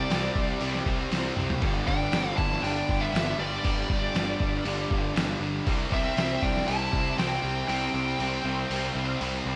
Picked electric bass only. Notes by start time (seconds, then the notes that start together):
0.10 C2
0.35 C2
0.61 C2
0.86 C2
1.11 C2
1.37 C2
1.62 G1
1.88 G1
2.12 G1
2.38 G1
2.62 G1
2.89 G1
3.13 G1
3.39 G1
3.65 G1
3.90 G1
4.15 G1
4.40 G1
4.65 G1
4.91 G1
5.15 G1
5.41 G1
5.67 C2
5.92 C2
6.17 C2
6.42 C2
6.68 C2
6.93 C2
7.18 C2
7.43 C2
7.69 C2
7.94 C2
8.19 C2
8.44 C2
8.70 C2
8.95 C2
9.21 C2
9.46 C2